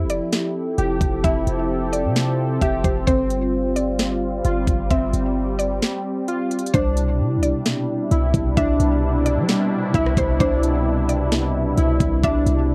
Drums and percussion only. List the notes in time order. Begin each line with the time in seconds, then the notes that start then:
0.10 closed hi-hat
0.33 snare, closed hi-hat
0.78 closed hi-hat
1.01 kick, closed hi-hat
1.24 kick, closed hi-hat
1.47 closed hi-hat
1.93 closed hi-hat
2.16 snare, closed hi-hat
2.61 kick, closed hi-hat
2.84 kick, closed hi-hat
3.07 kick, closed hi-hat
3.30 closed hi-hat
3.76 closed hi-hat
3.99 snare, closed hi-hat
4.45 closed hi-hat
4.67 kick, closed hi-hat
4.91 kick, closed hi-hat
5.14 closed hi-hat
5.59 closed hi-hat
5.82 snare, closed hi-hat
6.28 closed hi-hat
6.51 closed hi-hat
6.59 closed hi-hat
6.66 closed hi-hat
6.74 kick, closed hi-hat
6.97 closed hi-hat
7.43 closed hi-hat
7.65 snare, closed hi-hat
8.11 closed hi-hat
8.34 kick, closed hi-hat
8.57 kick, closed hi-hat
8.80 closed hi-hat
9.26 closed hi-hat
9.49 snare, closed hi-hat
9.94 kick, closed hi-hat
10.06 cross-stick
10.17 kick, closed hi-hat
10.40 kick, closed hi-hat
10.63 closed hi-hat
11.09 closed hi-hat
11.32 snare, closed hi-hat
11.78 closed hi-hat
12.00 kick, closed hi-hat
12.23 kick, closed hi-hat
12.46 closed hi-hat